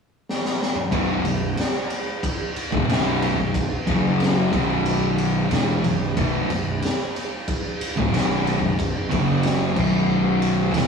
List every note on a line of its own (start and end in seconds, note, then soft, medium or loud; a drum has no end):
0.29 snare medium
0.45 snare medium
0.62 snare medium
0.75 mid tom loud
0.91 1.23 B0 medium
0.91 1.23 B1 medium
0.91 1.24 F#2 loud
0.91 1.24 B2 loud
0.91 kick loud
0.91 ride loud
1.24 1.55 B0 medium
1.24 1.51 B1 medium
1.24 1.51 F#2 medium
1.24 ride medium
1.57 snare loud
1.57 ride loud
1.90 ride medium
2.23 kick loud
2.23 ride loud
2.56 ride medium
2.72 2.88 D1 loud
2.72 2.88 D2 loud
2.72 2.88 A2 loud
2.72 kick loud
2.88 3.34 B0 loud
2.88 3.37 B1 medium
2.88 3.37 F#2 loud
2.88 3.38 B2 loud
2.88 snare loud
2.88 ride loud
3.22 ride medium
3.37 3.68 B0 medium
3.37 3.65 B1 medium
3.37 3.65 F#2 medium
3.54 kick loud
3.54 ride loud
3.87 4.49 F#1 loud
3.87 4.52 F#2 medium
3.87 4.52 C#3 loud
3.87 4.52 F#3 loud
3.87 kick loud
3.87 ride medium
4.20 snare loud
4.20 ride medium
4.52 5.47 B0 medium
4.52 5.50 B1 medium
4.52 5.50 F#2 medium
4.52 5.50 B2 loud
4.52 kick loud
4.52 ride medium
4.86 ride loud
5.18 ride medium
5.50 5.81 E1 loud
5.50 5.83 E2 medium
5.50 5.83 B2 loud
5.50 5.83 E3 loud
5.50 snare loud
5.50 ride loud
5.83 6.14 B0 medium
5.83 6.10 B1 medium
5.83 6.10 F#2 medium
5.83 ride medium
6.16 6.47 B0 medium
6.16 6.48 B1 loud
6.16 6.48 F#2 loud
6.16 6.48 B2 loud
6.16 kick loud
6.16 ride loud
6.48 6.79 B0 medium
6.48 6.76 B1 medium
6.48 6.76 F#2 medium
6.48 ride medium
6.82 snare loud
6.82 ride medium
7.16 ride medium
7.48 kick loud
7.48 ride loud
7.81 ride medium
7.97 8.12 D1 loud
7.97 8.12 D2 medium
7.97 8.13 A2 loud
7.97 kick loud
8.12 8.59 B0 medium
8.12 8.60 B1 medium
8.12 8.60 F#2 loud
8.12 8.61 B2 loud
8.12 snare loud
8.12 ride loud
8.47 ride medium
8.61 8.93 B0 medium
8.61 8.88 B1 medium
8.61 8.88 F#2 medium
8.79 kick loud
8.79 ride loud
9.10 9.73 F#1 medium
9.10 9.75 F#2 loud
9.10 9.75 C#3 loud
9.10 9.75 F#3 loud
9.10 kick loud
9.10 ride medium
9.43 snare loud
9.43 ride loud
9.75 10.71 B0 medium
9.75 10.73 B1 medium
9.75 10.73 F#2 medium
9.75 10.73 B2 loud
9.75 kick loud
9.75 crash medium
10.42 ride medium
10.74 10.87 E1 medium
10.74 10.87 E2 medium
10.74 10.87 B2 loud
10.74 10.87 E3 loud
10.74 snare loud
10.74 ride loud